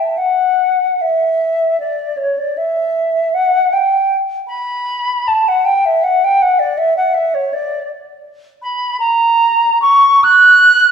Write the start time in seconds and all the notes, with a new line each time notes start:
0.00 E5
0.17 F#5
1.01 E5
1.80 D5
2.17 C#5
2.38 D5
2.57 E5
3.34 F#5
3.73 G5
4.47 B5
5.27 A5
5.48 F#5
5.65 G5
5.85 E5
6.03 F#5
6.24 G5
6.42 F#5
6.59 D5
6.78 E5
6.97 F#5
7.14 E5
7.34 C#5
7.53 D5
8.62 B5
8.99 A#5
9.82 C#6
10.23 F#6